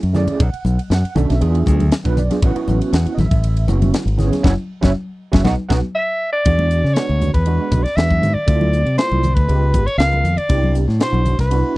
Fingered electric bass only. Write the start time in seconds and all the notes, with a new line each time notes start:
0.03 F#2
0.40 B1
0.65 B1
0.90 F#2
1.04 muted fingered electric bass stroke
1.16 B1
1.30 B1
1.42 E2
1.67 D2
2.05 B1
2.42 A1
2.56 muted fingered electric bass stroke
2.68 A1
2.93 E2
3.06 muted fingered electric bass stroke
3.18 A1
3.31 A1
3.68 F#1
4.05 G#1
4.44 F#1
4.83 F#1
5.33 F#1
5.45 B1
5.70 B1
6.46 E2
6.84 C#3
7.09 D2
7.34 E2
7.72 B1
7.85 muted fingered electric bass stroke
7.97 E2
8.22 G#2
8.36 muted fingered electric bass stroke
8.48 D2
8.85 C3
9.11 C2
9.37 D2
9.48 C#2
9.74 G#1
9.87 muted fingered electric bass stroke
9.98 C#2
10.24 F2
10.37 muted fingered electric bass stroke
10.50 C2
10.88 A2
11.13 B1
11.39 C2